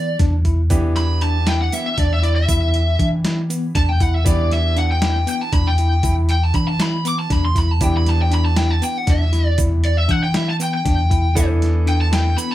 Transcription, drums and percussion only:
0.19 kick, snare, closed hi-hat, shaker
0.45 kick, closed hi-hat, shaker
0.70 kick, closed hi-hat, shaker
0.96 snare, closed hi-hat
1.21 closed hi-hat
1.47 snare, closed hi-hat
1.73 snare, closed hi-hat, shaker
1.98 kick, closed hi-hat
2.23 closed hi-hat, shaker
2.49 kick, closed hi-hat, shaker
2.74 closed hi-hat
2.99 kick, closed hi-hat
3.25 snare, closed hi-hat
3.50 closed hi-hat, shaker
3.75 kick, snare, closed hi-hat
4.00 kick, closed hi-hat, shaker
4.26 kick, closed hi-hat, shaker
4.51 snare, closed hi-hat
4.77 closed hi-hat
5.02 snare, closed hi-hat
5.27 closed hi-hat, shaker
5.53 kick, closed hi-hat
5.78 closed hi-hat, shaker
6.03 kick, closed hi-hat, shaker
6.29 closed hi-hat
6.54 kick, closed hi-hat, shaker
6.80 snare, closed hi-hat, shaker
7.05 closed hi-hat, shaker
7.30 kick, snare, closed hi-hat
7.56 kick, snare, closed hi-hat, shaker
7.81 kick, closed hi-hat, shaker
8.06 snare, closed hi-hat
8.32 closed hi-hat
8.56 snare, closed hi-hat
8.82 closed hi-hat, shaker
9.07 kick, snare, closed hi-hat
9.33 snare, closed hi-hat, shaker
9.58 kick, closed hi-hat, shaker
9.84 closed hi-hat
10.09 kick, closed hi-hat
10.34 snare, closed hi-hat
10.60 closed hi-hat, shaker
10.86 kick, snare, closed hi-hat
11.11 kick, closed hi-hat, shaker
11.36 kick, closed hi-hat, shaker
11.62 snare, closed hi-hat
11.87 closed hi-hat
12.13 snare, closed hi-hat
12.38 closed hi-hat, shaker

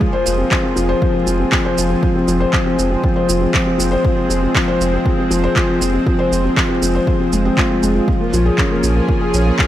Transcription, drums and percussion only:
0.01 kick
0.26 shaker
0.51 kick, clap
0.77 shaker
1.02 kick
1.27 shaker
1.52 kick, clap
1.78 shaker
2.03 kick
2.28 shaker
2.53 kick, clap
2.79 shaker
3.04 kick
3.29 shaker
3.54 kick, clap
3.80 shaker
4.05 kick
4.30 shaker
4.55 kick, clap
4.81 shaker
5.06 kick
5.31 shaker
5.56 kick, clap
5.82 shaker
6.07 kick
6.33 shaker
6.57 kick, clap
6.82 shaker
7.07 kick
7.33 shaker
7.58 kick, clap
7.83 shaker
8.08 kick
8.33 shaker
8.58 kick, clap
8.83 shaker
9.09 kick
9.34 shaker
9.59 kick, clap

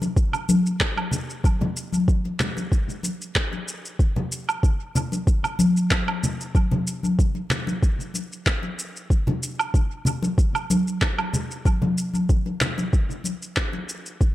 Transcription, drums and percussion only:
0.02 muted conga, shaker
0.17 kick, shaker
0.33 low woodblock, shaker
0.49 high conga, shaker
0.66 shaker
0.80 kick, clap, shaker
0.97 low woodblock
1.11 low conga, shaker
1.30 shaker
1.44 kick, high conga, shaker
1.61 muted conga, high conga, low conga
1.77 shaker
1.92 high conga, shaker
2.08 kick, shaker
2.25 muted conga
2.40 clap, low conga, shaker
2.57 muted conga, shaker
2.72 kick, shaker
2.90 shaker
3.03 muted conga, shaker
3.22 shaker
3.35 kick, clap, shaker
3.53 muted conga
3.68 shaker
3.85 shaker
3.99 kick, shaker
4.16 muted conga, high conga, low conga
4.32 shaker
4.49 low woodblock, shaker
4.63 kick, shaker
4.95 low conga, shaker
5.12 muted conga, shaker
5.27 kick, shaker
5.44 low woodblock, shaker
5.59 high conga, shaker
5.77 shaker
5.91 kick, clap, shaker
6.08 low woodblock
6.23 low conga, shaker
6.41 shaker
6.55 kick, high conga, shaker
6.71 muted conga, high conga, low conga
6.87 shaker
7.03 high conga, shaker
7.19 kick, shaker
7.35 muted conga
7.50 clap, low conga, shaker
7.67 muted conga, shaker
7.83 kick, shaker
8.00 shaker
8.14 muted conga, shaker
8.32 shaker
8.46 kick, clap, shaker
8.63 muted conga
8.79 shaker
8.96 shaker
9.10 kick, shaker
9.27 muted conga, high conga, low conga
9.43 shaker
9.59 low woodblock, shaker
9.74 kick, shaker
10.05 low conga, shaker
10.23 muted conga, shaker
10.38 kick, shaker
10.55 low woodblock, shaker
10.70 high conga, shaker
10.88 shaker
11.02 kick, clap, shaker
11.18 low woodblock
11.33 low conga, shaker
11.51 shaker
11.65 kick, high conga, shaker
11.82 muted conga, high conga, low conga
11.98 shaker
12.14 high conga, shaker
12.29 kick, shaker
12.46 muted conga
12.61 clap, low conga, shaker
12.78 muted conga, shaker
12.93 kick, shaker
13.11 shaker
13.24 muted conga, shaker
13.42 shaker
13.56 kick, clap, shaker
13.73 muted conga
13.89 shaker
14.06 shaker
14.21 kick, shaker

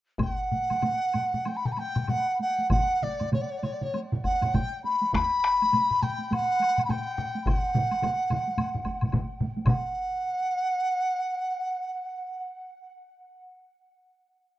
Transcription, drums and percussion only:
0.19 taiko, taiko low-mid, taiko high, high woodblock
0.52 taiko low-mid, taiko high
0.70 taiko low-mid, taiko high, high woodblock
0.82 taiko low-mid, taiko high, high woodblock
1.13 taiko low-mid, taiko high, high woodblock
1.34 taiko low-mid, taiko high
1.45 taiko high, high woodblock
1.65 taiko low-mid
1.77 taiko high, high woodblock
1.95 taiko low-mid, taiko high, high woodblock
2.07 taiko low-mid, taiko high, high woodblock
2.39 taiko high
2.58 taiko high
2.70 taiko, taiko mid, taiko high, high woodblock
3.02 taiko mid, taiko high
3.20 taiko mid, taiko high, high woodblock
3.32 taiko mid, taiko high, high woodblock
3.63 taiko mid, taiko high, high woodblock
3.81 taiko mid, taiko high
3.94 taiko high, high woodblock
4.12 taiko mid
4.24 taiko, taiko high, high woodblock
4.41 taiko mid, taiko high, high woodblock
4.54 taiko, taiko mid, taiko high, high woodblock
4.84 taiko high
5.01 taiko high
5.13 taiko rim, taiko, taiko high, high woodblock
5.44 taiko rim
5.62 taiko high, high woodblock
5.73 taiko low-mid, taiko high, high woodblock
5.91 taiko low-mid
6.02 taiko low-mid, taiko high, high woodblock
6.19 taiko high
6.31 taiko low-mid, taiko high, high woodblock
6.60 taiko high, high woodblock
6.78 taiko low-mid, taiko high, high woodblock
6.89 taiko low-mid, taiko high, high woodblock
7.18 taiko low-mid, taiko high
7.35 taiko high
7.46 taiko, taiko low-mid, taiko mid, taiko high, high woodblock
7.75 taiko low-mid, taiko mid, taiko high
7.91 taiko high, high woodblock
8.02 taiko low-mid, taiko mid, taiko high, high woodblock
8.30 taiko low-mid, taiko mid, taiko high, high woodblock
8.48 taiko high
8.58 taiko low-mid, taiko mid, taiko high, high woodblock
8.75 taiko low-mid, taiko mid
8.85 taiko, taiko high, high woodblock
9.01 taiko low-mid, taiko mid, taiko high, high woodblock
9.12 taiko, taiko low-mid, taiko mid, taiko high, high woodblock
9.40 taiko low-mid, taiko mid, taiko high
9.57 taiko high
9.66 taiko, taiko low-mid, taiko mid, taiko high, high woodblock

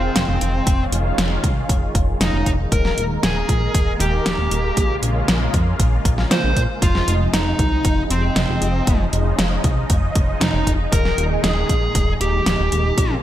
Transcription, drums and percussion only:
0.16 snare, closed hi-hat
0.41 closed hi-hat
0.67 kick, closed hi-hat
0.92 closed hi-hat
1.18 snare, closed hi-hat
1.44 kick, closed hi-hat
1.69 kick, closed hi-hat
1.95 kick, closed hi-hat
2.21 snare, closed hi-hat
2.46 kick, closed hi-hat
2.72 kick, closed hi-hat
2.85 snare
2.98 closed hi-hat
3.23 snare, closed hi-hat
3.49 kick, closed hi-hat
3.75 kick, closed hi-hat
4.00 closed hi-hat
4.26 snare, closed hi-hat
4.51 closed hi-hat
4.77 kick, closed hi-hat
5.03 closed hi-hat
5.28 snare, closed hi-hat
5.54 kick, closed hi-hat
5.80 kick, closed hi-hat
6.05 kick, closed hi-hat
6.18 snare
6.31 snare, closed hi-hat
6.56 kick, closed hi-hat
6.82 kick, closed hi-hat
6.95 snare
7.08 closed hi-hat
7.34 snare, closed hi-hat
7.59 kick, closed hi-hat
7.85 kick, closed hi-hat
8.11 closed hi-hat
8.36 snare, closed hi-hat
8.62 closed hi-hat
8.87 kick, closed hi-hat
9.13 closed hi-hat
9.39 snare, closed hi-hat
9.64 kick, closed hi-hat
9.90 kick, closed hi-hat
10.15 kick, closed hi-hat
10.41 snare, closed hi-hat
10.67 kick, closed hi-hat
10.92 kick, closed hi-hat
11.05 snare
11.18 closed hi-hat
11.44 snare, closed hi-hat
11.69 kick, closed hi-hat
11.95 kick, closed hi-hat
12.21 closed hi-hat
12.46 snare, closed hi-hat
12.72 closed hi-hat
12.98 kick, closed hi-hat

